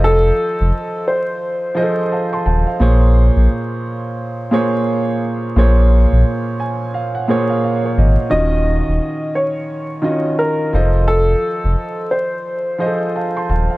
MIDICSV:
0, 0, Header, 1, 4, 480
1, 0, Start_track
1, 0, Key_signature, -5, "minor"
1, 0, Tempo, 689655
1, 31, Time_signature, 4, 2, 24, 8
1, 9586, End_track
2, 0, Start_track
2, 0, Title_t, "Grand piano"
2, 0, Program_c, 0, 0
2, 0, Control_c, 0, 64, 127
2, 0, Note_on_c, 0, 53, 92
2, 0, Note_on_c, 0, 65, 79
2, 0, Note_on_c, 0, 69, 77
2, 0, Note_on_c, 0, 72, 81
2, 0, Note_on_c, 0, 75, 108
2, 569, Note_off_c, 0, 53, 0
2, 571, Note_off_c, 0, 65, 0
2, 574, Note_off_c, 0, 69, 0
2, 576, Note_off_c, 0, 72, 0
2, 578, Note_off_c, 0, 75, 0
2, 1215, Note_on_c, 0, 53, 87
2, 1220, Note_on_c, 0, 65, 78
2, 1224, Note_on_c, 0, 68, 64
2, 1228, Note_on_c, 0, 72, 87
2, 1233, Note_on_c, 0, 75, 96
2, 1269, Note_on_c, 0, 69, 81
2, 1284, Note_off_c, 0, 68, 0
2, 1476, Note_on_c, 0, 81, 63
2, 1481, Note_on_c, 0, 77, 59
2, 1616, Note_off_c, 0, 81, 0
2, 1619, Note_off_c, 0, 77, 0
2, 1622, Note_on_c, 0, 84, 76
2, 1626, Note_on_c, 0, 81, 67
2, 1702, Note_off_c, 0, 81, 0
2, 1707, Note_off_c, 0, 84, 0
2, 1713, Note_on_c, 0, 81, 73
2, 1717, Note_on_c, 0, 77, 63
2, 1764, Note_off_c, 0, 53, 0
2, 1767, Note_off_c, 0, 65, 0
2, 1771, Note_off_c, 0, 72, 0
2, 1773, Note_off_c, 0, 75, 0
2, 1791, Note_off_c, 0, 69, 0
2, 1847, Note_off_c, 0, 77, 0
2, 1854, Note_off_c, 0, 81, 0
2, 1858, Note_on_c, 0, 77, 62
2, 1947, Note_on_c, 0, 46, 88
2, 1951, Note_on_c, 0, 58, 91
2, 1956, Note_on_c, 0, 68, 89
2, 1959, Control_c, 0, 64, 0
2, 1960, Note_on_c, 0, 72, 93
2, 1964, Note_on_c, 0, 73, 100
2, 2068, Control_c, 0, 64, 127
2, 2087, Note_off_c, 0, 77, 0
2, 2658, Note_off_c, 0, 46, 0
2, 2660, Note_off_c, 0, 58, 0
2, 2662, Note_off_c, 0, 68, 0
2, 2664, Note_off_c, 0, 72, 0
2, 2667, Note_off_c, 0, 73, 0
2, 3140, Note_on_c, 0, 46, 92
2, 3144, Note_on_c, 0, 58, 89
2, 3148, Note_on_c, 0, 68, 88
2, 3153, Note_on_c, 0, 72, 85
2, 3158, Note_on_c, 0, 73, 107
2, 3687, Note_off_c, 0, 46, 0
2, 3689, Note_off_c, 0, 58, 0
2, 3691, Note_off_c, 0, 68, 0
2, 3693, Note_off_c, 0, 72, 0
2, 3696, Note_off_c, 0, 73, 0
2, 3870, Note_on_c, 0, 46, 91
2, 3874, Note_on_c, 0, 58, 90
2, 3879, Note_on_c, 0, 68, 84
2, 3883, Note_on_c, 0, 72, 88
2, 3888, Note_on_c, 0, 73, 102
2, 4579, Note_off_c, 0, 46, 0
2, 4582, Note_off_c, 0, 58, 0
2, 4584, Note_off_c, 0, 68, 0
2, 4586, Note_off_c, 0, 72, 0
2, 4588, Note_off_c, 0, 73, 0
2, 4592, Note_on_c, 0, 80, 79
2, 4814, Note_off_c, 0, 80, 0
2, 4832, Note_on_c, 0, 77, 78
2, 4971, Note_off_c, 0, 77, 0
2, 4975, Note_on_c, 0, 78, 70
2, 5066, Note_on_c, 0, 46, 92
2, 5071, Note_on_c, 0, 58, 88
2, 5075, Note_on_c, 0, 68, 89
2, 5080, Note_on_c, 0, 72, 83
2, 5084, Note_on_c, 0, 73, 100
2, 5201, Note_off_c, 0, 78, 0
2, 5214, Note_on_c, 0, 77, 73
2, 5301, Note_off_c, 0, 77, 0
2, 5316, Note_on_c, 0, 77, 73
2, 5453, Note_off_c, 0, 77, 0
2, 5456, Note_off_c, 0, 73, 0
2, 5466, Note_on_c, 0, 73, 76
2, 5547, Note_off_c, 0, 73, 0
2, 5553, Note_on_c, 0, 75, 74
2, 5610, Note_off_c, 0, 46, 0
2, 5612, Note_off_c, 0, 58, 0
2, 5614, Note_off_c, 0, 68, 0
2, 5617, Note_off_c, 0, 72, 0
2, 5775, Note_off_c, 0, 75, 0
2, 5776, Note_on_c, 0, 51, 84
2, 5780, Note_on_c, 0, 61, 85
2, 5784, Note_on_c, 0, 65, 76
2, 5788, Note_on_c, 0, 66, 76
2, 5793, Note_on_c, 0, 75, 94
2, 5800, Control_c, 0, 64, 0
2, 5910, Control_c, 0, 64, 127
2, 6492, Note_off_c, 0, 51, 0
2, 6494, Note_off_c, 0, 61, 0
2, 6496, Note_off_c, 0, 65, 0
2, 6499, Note_off_c, 0, 66, 0
2, 6501, Note_off_c, 0, 75, 0
2, 6973, Note_on_c, 0, 51, 82
2, 6977, Note_on_c, 0, 61, 74
2, 6982, Note_on_c, 0, 65, 80
2, 6986, Note_on_c, 0, 66, 75
2, 6991, Note_on_c, 0, 75, 93
2, 7461, Note_off_c, 0, 65, 0
2, 7462, Note_off_c, 0, 51, 0
2, 7464, Note_off_c, 0, 61, 0
2, 7467, Note_on_c, 0, 53, 87
2, 7468, Note_off_c, 0, 66, 0
2, 7471, Note_off_c, 0, 75, 0
2, 7471, Note_on_c, 0, 65, 75
2, 7476, Note_on_c, 0, 69, 76
2, 7478, Control_c, 0, 64, 0
2, 7480, Note_on_c, 0, 72, 80
2, 7484, Note_on_c, 0, 75, 99
2, 7588, Control_c, 0, 64, 127
2, 8249, Note_off_c, 0, 53, 0
2, 8251, Note_off_c, 0, 65, 0
2, 8253, Note_off_c, 0, 69, 0
2, 8255, Note_off_c, 0, 72, 0
2, 8258, Note_off_c, 0, 75, 0
2, 8896, Note_on_c, 0, 53, 82
2, 8901, Note_on_c, 0, 65, 78
2, 8905, Note_on_c, 0, 68, 62
2, 8910, Note_on_c, 0, 72, 83
2, 8914, Note_on_c, 0, 75, 90
2, 8950, Note_on_c, 0, 69, 79
2, 8964, Note_off_c, 0, 68, 0
2, 9157, Note_on_c, 0, 81, 61
2, 9162, Note_on_c, 0, 77, 56
2, 9297, Note_off_c, 0, 81, 0
2, 9299, Note_off_c, 0, 77, 0
2, 9303, Note_on_c, 0, 84, 73
2, 9307, Note_on_c, 0, 81, 67
2, 9382, Note_off_c, 0, 81, 0
2, 9387, Note_off_c, 0, 84, 0
2, 9393, Note_on_c, 0, 81, 70
2, 9397, Note_on_c, 0, 77, 61
2, 9445, Note_off_c, 0, 53, 0
2, 9447, Note_off_c, 0, 65, 0
2, 9452, Note_off_c, 0, 72, 0
2, 9454, Note_off_c, 0, 75, 0
2, 9472, Note_off_c, 0, 69, 0
2, 9527, Note_off_c, 0, 77, 0
2, 9535, Note_off_c, 0, 81, 0
2, 9538, Note_on_c, 0, 77, 61
2, 9586, Note_off_c, 0, 77, 0
2, 9586, End_track
3, 0, Start_track
3, 0, Title_t, "Upright piano"
3, 0, Program_c, 1, 0
3, 29, Note_on_c, 1, 69, 111
3, 722, Note_off_c, 1, 69, 0
3, 749, Note_on_c, 1, 72, 81
3, 1922, Note_off_c, 1, 72, 0
3, 5782, Note_on_c, 1, 75, 96
3, 6478, Note_off_c, 1, 75, 0
3, 6510, Note_on_c, 1, 73, 72
3, 7202, Note_off_c, 1, 73, 0
3, 7230, Note_on_c, 1, 70, 85
3, 7446, Note_off_c, 1, 70, 0
3, 7709, Note_on_c, 1, 69, 109
3, 8402, Note_off_c, 1, 69, 0
3, 8429, Note_on_c, 1, 72, 79
3, 9586, Note_off_c, 1, 72, 0
3, 9586, End_track
4, 0, Start_track
4, 0, Title_t, "Sub bass"
4, 0, Program_c, 2, 38
4, 0, Note_on_c, 2, 29, 103
4, 219, Note_off_c, 2, 29, 0
4, 422, Note_on_c, 2, 29, 96
4, 501, Note_off_c, 2, 29, 0
4, 1713, Note_on_c, 2, 27, 100
4, 1846, Note_off_c, 2, 27, 0
4, 1951, Note_on_c, 2, 34, 109
4, 2298, Note_off_c, 2, 34, 0
4, 2342, Note_on_c, 2, 34, 106
4, 2421, Note_off_c, 2, 34, 0
4, 3872, Note_on_c, 2, 34, 118
4, 4219, Note_off_c, 2, 34, 0
4, 4263, Note_on_c, 2, 34, 94
4, 4342, Note_off_c, 2, 34, 0
4, 5552, Note_on_c, 2, 32, 99
4, 5685, Note_off_c, 2, 32, 0
4, 5791, Note_on_c, 2, 27, 106
4, 6138, Note_off_c, 2, 27, 0
4, 6183, Note_on_c, 2, 27, 94
4, 6262, Note_off_c, 2, 27, 0
4, 7473, Note_on_c, 2, 29, 103
4, 7899, Note_off_c, 2, 29, 0
4, 8103, Note_on_c, 2, 29, 94
4, 8182, Note_off_c, 2, 29, 0
4, 9392, Note_on_c, 2, 27, 93
4, 9525, Note_off_c, 2, 27, 0
4, 9586, End_track
0, 0, End_of_file